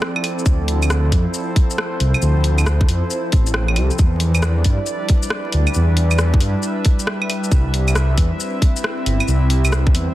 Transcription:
Already playing: F3 C4 E4 A4 D5
0.02 cross-stick
0.16 claves
0.24 open hi-hat, claves
0.39 shaker
0.46 D2 C5, kick, shaker
0.60 D2
0.68 open hi-hat
0.83 claves, shaker
0.90 cross-stick, shaker
1.12 F2, kick, open hi-hat
1.34 shaker
1.56 kick, open hi-hat
1.71 shaker
1.78 cross-stick
2.00 C2, open hi-hat
2.14 claves, shaker
2.22 D2, shaker
2.36 D2
2.44 open hi-hat
2.58 claves, shaker
2.67 cross-stick, shaker
2.81 kick
2.88 F2, open hi-hat
3.10 shaker
3.32 A1, kick, open hi-hat
3.46 shaker
3.54 cross-stick
3.68 claves
3.76 C2, open hi-hat, claves
3.91 shaker
3.98 E2 G3 D4 B4 D5, kick, shaker
4.14 E2
4.20 open hi-hat
4.35 claves, shaker
4.43 cross-stick, shaker
4.64 G2, kick, open hi-hat
4.86 shaker
5.08 kick, open hi-hat
5.23 shaker
5.30 cross-stick
5.52 D2, open hi-hat
5.67 claves, shaker
5.74 E2 E5, shaker
5.90 E2
5.97 open hi-hat
6.11 claves, shaker
6.19 cross-stick, shaker
6.34 kick
6.41 G2, open hi-hat
6.63 shaker
6.85 kick, open hi-hat
6.99 shaker
7.07 cross-stick
7.22 claves
7.30 open hi-hat, claves
7.44 shaker
7.52 C2 C4 E4, kick, shaker
7.66 C2
7.74 open hi-hat
7.88 claves, shaker
7.96 cross-stick, shaker
8.18 E2, kick, open hi-hat
8.40 shaker
8.62 kick, open hi-hat
8.76 shaker
8.84 cross-stick
9.06 G1, open hi-hat
9.20 claves, shaker
9.28 C2 C5, shaker
9.42 C2
9.50 open hi-hat
9.65 claves, shaker
9.72 cross-stick, shaker
9.87 kick
9.94 E2, open hi-hat

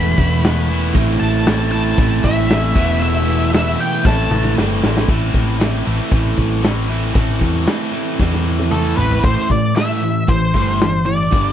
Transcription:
Already playing: E1 E2 B2 E3 A3 B3 E4 B5
0.17 E1 A3 B3 E4, kick, open hi-hat
0.43 E3 A3 B3 E4, snare, open hi-hat
0.69 A3 B3 E4, open hi-hat
0.95 A1 A2 E3 A3 C4 E4, kick, open hi-hat
1.09 snare
1.20 A1 A3 C4 E4 A5, open hi-hat
1.45 E3 A3 C4 E4, snare, open hi-hat
1.71 A2 E3 A3 C4 E4 A5, open hi-hat
1.97 A1 A2 E3 A3 C4 E4, kick, open hi-hat
2.23 A1 A3 C4 E4 E5, kick, open hi-hat
2.38 snare
2.49 A2 E3 A3 C4 E4, snare, open hi-hat
2.74 E1 E2 B2 E3 A3 B3 E4, kick, open hi-hat
3.00 E3 A3 B3 E4 E5, open hi-hat
3.26 A3 B3 E4, open hi-hat
3.52 E3 A3 B3 E4 E5, snare, open hi-hat
3.78 E3 A3 B3 E4 G5, open hi-hat
4.04 A1 A2 E3 A3 C4 E4 A5, kick, snare
4.30 A1 A3 C4 E4, mid tom
4.44 mid tom
4.57 G1 A2 E3 A3 C4 E4, snare
4.82 A1 A3 C4 E4, snare
4.97 snare
5.08 A1 A2 E3 A3 C4 E4, kick, crash
5.34 A1, kick, closed hi-hat
5.59 A2 E3 A3 C4 E4, snare, closed hi-hat
5.85 A1 A2 E3 A3 C4 E4, closed hi-hat
6.11 A1 A2 E3 A3 C4 E4, kick, closed hi-hat
6.37 A1, kick, closed hi-hat
6.62 A2 E3 A3 C4 E4, snare, closed hi-hat
6.89 A2 E3 A3 C4 E4, closed hi-hat
7.15 A1 A2 E3 A3 C4 E4, kick, closed hi-hat
7.41 E2, kick, closed hi-hat
7.66 A2 E3 A3 C4 E4, snare, closed hi-hat
7.92 A2 E3 A3 C4 E4, closed hi-hat
8.18 E2 A2 E3 A3 C4 E4, kick, snare
8.34 snare
8.59 high tom
8.71 A2 E3 A3 C4 E4 A4, mid tom
8.97 A1 A2 E3 A3 C4 E4 B4, floor tom
9.11 floor tom
9.23 A1 A2 E3 A3 C5, kick, closed hi-hat
9.49 A2 E3 D5, kick, closed hi-hat
9.75 A2 E3 A3 E5, snare, closed hi-hat
10.01 A2 E3, closed hi-hat
10.27 A1 A2 E3 C5, kick, closed hi-hat
10.53 G1 A2 E3 A3, kick, closed hi-hat
10.80 A2 E3, snare, closed hi-hat
11.06 A2 E3 D5, closed hi-hat
11.31 G1 G2 D3 G3, kick, closed hi-hat

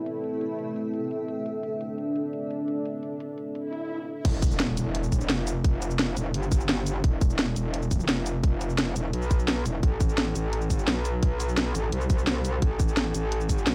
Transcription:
Already playing: A3 C4 E4 A4 B4 E5
0.06 closed hi-hat
0.24 closed hi-hat
0.41 closed hi-hat
0.59 closed hi-hat
0.76 closed hi-hat
0.94 closed hi-hat
1.11 closed hi-hat
1.28 closed hi-hat
1.46 D4, closed hi-hat
1.63 closed hi-hat
1.81 closed hi-hat
1.98 closed hi-hat
2.16 closed hi-hat
2.33 closed hi-hat
2.51 closed hi-hat
2.68 closed hi-hat
2.85 closed hi-hat
3.03 closed hi-hat
3.20 closed hi-hat
3.38 closed hi-hat
3.55 closed hi-hat, swell
3.73 closed hi-hat
4.25 E1, kick, closed hi-hat, crash, impact
4.42 kick, closed hi-hat, cabasa
4.51 cabasa
4.60 snare, closed hi-hat
4.77 E1, closed hi-hat, cabasa
4.95 closed hi-hat
5.03 cabasa
5.12 kick, closed hi-hat, cabasa
5.21 cabasa
5.30 F1, snare, closed hi-hat
5.47 closed hi-hat, cabasa
5.64 kick, closed hi-hat
5.82 closed hi-hat, cabasa
5.91 cabasa
5.99 snare, closed hi-hat
6.17 E1, closed hi-hat, cabasa
6.34 G1, closed hi-hat
6.43 cabasa
6.52 kick, closed hi-hat, cabasa
6.60 cabasa
6.69 snare, closed hi-hat
6.87 closed hi-hat, cabasa
7.04 E1, kick, closed hi-hat
7.21 kick, closed hi-hat, cabasa
7.30 cabasa
7.39 snare, closed hi-hat
7.56 E1, closed hi-hat, cabasa
7.74 closed hi-hat
7.82 cabasa
7.91 kick, closed hi-hat, cabasa
8.00 cabasa
8.09 F1, snare, closed hi-hat
8.26 closed hi-hat, cabasa
8.43 kick, closed hi-hat
8.61 closed hi-hat, cabasa
8.70 cabasa
8.78 snare, closed hi-hat
8.96 E1, closed hi-hat, cabasa
9.13 B1, closed hi-hat
9.22 cabasa
9.31 kick, closed hi-hat, cabasa
9.39 cabasa
9.48 snare, closed hi-hat
9.66 E1, closed hi-hat, cabasa
9.83 A1, kick, closed hi-hat
10.00 kick, closed hi-hat, cabasa
10.09 cabasa
10.18 snare, closed hi-hat
10.35 A1, closed hi-hat, cabasa
10.53 closed hi-hat
10.62 cabasa
10.70 kick, closed hi-hat, cabasa
10.79 cabasa
10.88 B1, snare, closed hi-hat
11.05 closed hi-hat, cabasa
11.23 kick, closed hi-hat
11.40 closed hi-hat, cabasa
11.49 cabasa
11.57 snare, closed hi-hat
11.75 A1, closed hi-hat, cabasa
11.92 C2, closed hi-hat
12.01 cabasa
12.10 kick, closed hi-hat, cabasa
12.19 cabasa
12.27 snare, closed hi-hat
12.45 closed hi-hat, cabasa
12.62 A1, kick, closed hi-hat
12.80 kick, closed hi-hat, cabasa
12.88 cabasa
12.97 snare, closed hi-hat
13.14 A1, closed hi-hat, cabasa
13.32 closed hi-hat
13.41 cabasa
13.49 kick, closed hi-hat, cabasa
13.58 cabasa
13.67 B1, snare, closed hi-hat

